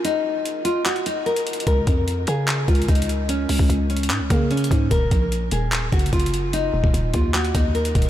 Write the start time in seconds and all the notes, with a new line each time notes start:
0.05 D#4, closed hi-hat
0.45 closed hi-hat
0.65 F4, closed hi-hat
0.86 F#4, clap, closed hi-hat
0.96 closed hi-hat
1.06 D#4, closed hi-hat
1.26 A#4, closed hi-hat
1.36 closed hi-hat
1.47 closed hi-hat
1.53 closed hi-hat
1.60 closed hi-hat
1.67 C#2 A#4, kick, closed hi-hat
1.87 F2, kick, closed hi-hat
2.08 closed hi-hat
2.27 C#3 G#4, closed hi-hat
2.48 clap, closed hi-hat
2.68 C#2 F4, kick, closed hi-hat
2.75 closed hi-hat
2.82 closed hi-hat
2.88 C#2 D#4, kick, closed hi-hat
2.95 closed hi-hat
3.02 closed hi-hat
3.09 closed hi-hat
3.29 C#4, closed hi-hat
3.49 C#2, open hi-hat
3.59 C#2, kick
3.69 C#2, closed hi-hat
3.90 C#4, closed hi-hat
3.97 closed hi-hat
4.03 closed hi-hat
4.10 G#2, clap, closed hi-hat
4.20 C#2
4.30 C#3 A#3, kick, closed hi-hat
4.51 C#4, closed hi-hat
4.57 closed hi-hat
4.64 closed hi-hat
4.71 G#2, kick, closed hi-hat
4.91 D#1 A#4, kick, closed hi-hat
5.11 A#1, kick, closed hi-hat
5.32 closed hi-hat
5.51 D#1 G#4, closed hi-hat
5.72 clap, closed hi-hat
5.92 F#1 F#4, kick, closed hi-hat
5.99 closed hi-hat
6.06 closed hi-hat
6.13 F#1 F4, kick, closed hi-hat
6.20 closed hi-hat
6.26 closed hi-hat
6.34 closed hi-hat
6.53 D#4, closed hi-hat
6.74 D#1
6.84 D#1, kick
6.94 D#1, closed hi-hat
7.14 D#2 F4, kick, closed hi-hat
7.34 F#4, clap, closed hi-hat
7.45 closed hi-hat
7.55 D#2 D#4, kick, closed hi-hat
7.75 A#4, closed hi-hat
7.85 closed hi-hat
7.95 D#1, kick, closed hi-hat
8.02 closed hi-hat